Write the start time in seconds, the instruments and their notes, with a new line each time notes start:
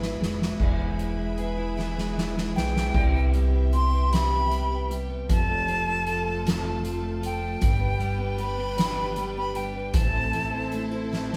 Already playing: upright bass G#1, string section E3 E4 G#4 B4 B5, clean electric guitar E3 G#3 B3, steel-string acoustic guitar E4 G#4
0.01 steel-string acoustic guitar B3, snare
0.20 upright bass F1, clean electric guitar G#3, steel-string acoustic guitar E4, snare
0.40 steel-string acoustic guitar B3, snare
0.59 upright bass E1, clean electric guitar E3 E4, steel-string acoustic guitar B3 G#4, string section G#4 B4 E5 B5, kick, crash
0.79 clean electric guitar G#3, steel-string acoustic guitar B3
0.99 clean electric guitar E4, steel-string acoustic guitar E4, closed hi-hat
1.17 clean electric guitar G#3, steel-string acoustic guitar B3
1.38 clean electric guitar B3, steel-string acoustic guitar G#4, closed hi-hat
1.58 clean electric guitar E4, steel-string acoustic guitar E4
1.77 clean electric guitar E3 E4, steel-string acoustic guitar B3 G#4, snare
1.97 clean electric guitar G#3, steel-string acoustic guitar B3, snare
2.16 clean electric guitar E4, steel-string acoustic guitar E4, snare
2.36 clean electric guitar G#3, steel-string acoustic guitar B3, snare
2.55 upright bass B1, clean electric guitar B3, steel-string acoustic guitar G#4, flute G5, snare
2.75 steel-string acoustic guitar E4, clean electric guitar E4, snare
2.94 upright bass C2, clean electric guitar C3, steel-string acoustic guitar G3, string section G4 E5 G5, kick, crash
3.14 clean electric guitar B3
3.34 clean electric guitar G3, steel-string acoustic guitar B3, closed hi-hat
3.53 clean electric guitar B3
3.73 clean electric guitar G3, steel-string acoustic guitar G4, flute C6, closed hi-hat
3.92 clean electric guitar B3
4.12 clean electric guitar C3, steel-string acoustic guitar E4, flute B5, snare, closed hi-hat
4.31 clean electric guitar B3
4.51 clean electric guitar G3, steel-string acoustic guitar B3, closed hi-hat
4.71 clean electric guitar B3
4.90 clean electric guitar G3, steel-string acoustic guitar G4, closed hi-hat
5.10 clean electric guitar B3
5.29 upright bass F1, clean electric guitar F2, steel-string acoustic guitar F3, string section F4 A4 A5, flute A5, kick, closed hi-hat
5.50 clean electric guitar A3
5.68 clean electric guitar F3, steel-string acoustic guitar C4, closed hi-hat
5.87 clean electric guitar A3
6.07 clean electric guitar F3, steel-string acoustic guitar A4, closed hi-hat
6.27 clean electric guitar A3
6.45 clean electric guitar F2, steel-string acoustic guitar F4, snare, closed hi-hat
6.64 clean electric guitar A3
6.84 clean electric guitar F3, steel-string acoustic guitar C4, closed hi-hat
7.02 clean electric guitar A3
7.21 clean electric guitar F3, steel-string acoustic guitar A4, closed hi-hat
7.26 flute G5
7.41 clean electric guitar A3
7.61 upright bass G1, clean electric guitar G2, steel-string acoustic guitar G3, string section D4 G4 B4 G5, kick, closed hi-hat
7.79 clean electric guitar B3
8.00 clean electric guitar G3, steel-string acoustic guitar B3, closed hi-hat
8.19 clean electric guitar B3
8.38 clean electric guitar G3, steel-string acoustic guitar G4, flute B5, closed hi-hat
8.58 clean electric guitar B3
8.76 clean electric guitar G2, steel-string acoustic guitar D4, snare, closed hi-hat
8.96 clean electric guitar B3
9.16 clean electric guitar G3, steel-string acoustic guitar B3, closed hi-hat
9.37 clean electric guitar B3, flute B5
9.55 clean electric guitar G3, steel-string acoustic guitar G4, flute G5, closed hi-hat
9.76 clean electric guitar B3
9.94 upright bass A1, clean electric guitar A2, steel-string acoustic guitar E3, string section E4 A4 C5 A5, flute A5, kick, closed hi-hat
10.15 clean electric guitar C4
10.33 steel-string acoustic guitar E3, clean electric guitar A3, closed hi-hat
10.54 clean electric guitar C4
10.72 clean electric guitar A3, steel-string acoustic guitar D4, closed hi-hat
10.91 clean electric guitar C4, steel-string acoustic guitar E4
11.12 clean electric guitar A2, steel-string acoustic guitar C4, snare
11.33 clean electric guitar C4, snare